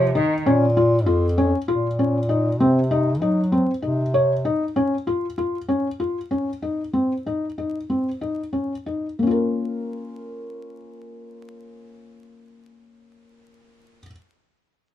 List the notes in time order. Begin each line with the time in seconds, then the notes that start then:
Already playing: C3 F3
0.15 D#3 D#4, frame drum
0.46 A#2 C#4
0.77 F4
1.06 F2 F4
1.38 C#4
1.68 A#2 F4
1.99 C#4
2.29 D#4
2.60 C3 C4
2.91 D#4
3.22 F#3 D#4
3.52 C4
3.82 C3 D#4
4.14 C#5
4.45 D#4
4.76 C#4
5.07 F4
5.38 F4
5.68 C#4
6.00 F4
6.31 C#4
6.62 D#4
6.93 C4
7.26 D#4
7.58 D#4
7.90 C4
8.21 D#4
8.53 C#4
8.86 D#4
9.19 A#3 C#4
9.27 F4 A#4